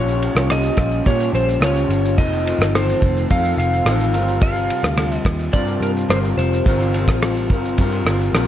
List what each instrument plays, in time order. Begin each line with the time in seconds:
Already playing: picked electric bass A#1, clean electric guitar A#2 G3 C#4 F4 A#4, analog synth pad A#3 C#4 G4, electric slide guitar C#5
0.08 shaker
0.22 ride, shaker
0.35 picked electric bass C2, cross-stick, shaker
0.50 electric slide guitar D#5, cross-stick, ride, shaker
0.63 shaker
0.77 picked electric bass A#1, clean electric guitar G3 C#4 F4, kick, cross-stick, ride, shaker
0.91 shaker
1.05 clean electric guitar A#2 G3 C#4 F4, picked electric bass A#2, electric slide guitar C#5, kick, ride, shaker
1.20 shaker
1.33 picked electric bass A#1, electric slide guitar C5, ride, shaker
1.49 shaker
1.60 picked electric bass C#2, clean electric guitar A#2 G3 C#4 F4, electric slide guitar C#5, cross-stick, ride, shaker
1.76 shaker
1.89 picked electric bass G1, ride, shaker
2.05 shaker
2.17 picked electric bass F1, analog synth pad D#3 A3 F4, clean electric guitar F3 C4 D#4 A4, electric slide guitar D#5, kick, ride, shaker
2.33 shaker
2.47 ride, shaker
2.59 picked electric bass G1, cross-stick, shaker
2.75 electric slide guitar C5, cross-stick, ride, shaker
2.90 shaker
3.00 picked electric bass F1, clean electric guitar C4 D#4 A4, kick, ride, shaker
3.17 shaker
3.29 picked electric bass F2, clean electric guitar F3 C4 D#4 A4, electric slide guitar F5, kick, ride, shaker
3.44 shaker
3.57 picked electric bass F1, electric slide guitar F5, ride, shaker
3.73 shaker
3.85 picked electric bass A1, clean electric guitar F3 C4 D#4 A4, cross-stick, ride, shaker
4.00 shaker
4.13 picked electric bass G1, analog synth pad C3 G3, clean electric guitar F4 A#4, ride, shaker
4.17 clean electric guitar G3 C4
4.28 shaker
4.41 electric slide guitar F5, kick, ride, shaker
4.56 shaker
4.70 ride, shaker
4.83 picked electric bass D2, cross-stick, shaker
4.97 cross-stick, ride, shaker
5.12 shaker
5.18 electric slide guitar D#5
5.25 picked electric bass D#2, kick, cross-stick, ride, shaker
5.39 shaker
5.53 picked electric bass G2, clean electric guitar G3 C4 F4 A#4, electric slide guitar D5, kick, ride, shaker
5.67 shaker
5.81 picked electric bass G2, electric slide guitar A#4, ride, shaker
5.97 shaker
6.09 picked electric bass G1, clean electric guitar G3 C4 F4 A#4, electric slide guitar C5, cross-stick, ride, shaker
6.24 shaker
6.37 picked electric bass F1, electric slide guitar C5, ride, shaker
6.54 shaker
6.66 picked electric bass G1, clean electric guitar G3 C4 F4 A#4, kick, ride, shaker
6.80 shaker
6.94 ride, shaker
7.07 picked electric bass A1, kick, cross-stick, shaker
7.22 cross-stick, ride, shaker
7.36 shaker
7.50 picked electric bass G1, clean electric guitar C4 F4 A#4, kick, ride, shaker
7.65 shaker
7.78 picked electric bass G2, clean electric guitar G3 C4 F4 A#4, kick, ride, shaker
7.92 shaker
8.05 picked electric bass G1, cross-stick, ride, shaker
8.21 shaker
8.33 picked electric bass A#1, clean electric guitar G3 C4 F4 A#4, cross-stick, ride, shaker